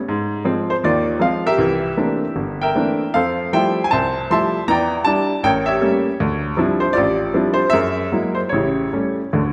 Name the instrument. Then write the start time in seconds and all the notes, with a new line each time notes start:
grand piano
0.08 G#2
0.44 F3 G#3 C4
0.70 C5
0.84 D#2 D#3 F4 D5
1.20 F3 G#3 C4 F5
1.46 G4 A#4 E5
1.58 C2 E3
1.97 E3 A3 A#3 C4 D4
2.36 G1
2.62 A#4 E5 G5
2.75 E3 A3 A#3 C4 D4
3.14 F2 A4 C5 F5
3.53 F3 G3 A3 E4 C5 E5 G5
3.84 G#5
3.91 C2 C5 E5 A5
4.30 F3 G3 A3 E4 E5 A5 C6
4.68 E2 E3 D5 G5 A#5
5.05 G3 D4 E4 D5 A5
5.44 A1 A#4 C#5 G5
5.66 G4 C#5 E5
5.81 G3 A3 A#3 C#4
6.20 D2
6.57 F3 G3 C4 D4 E4
6.80 C5
6.93 F4 G4 D5
6.97 A1
7.34 F3 G3 C4 D4 E4
7.54 C5
7.70 F#2 G#4 A#4 E5
8.12 F#3 G#3 A#3 E4
8.35 C5
8.49 A1 C#3 G4 C#5
8.54 E4
8.93 G3 A3 C#4
9.33 D2 D3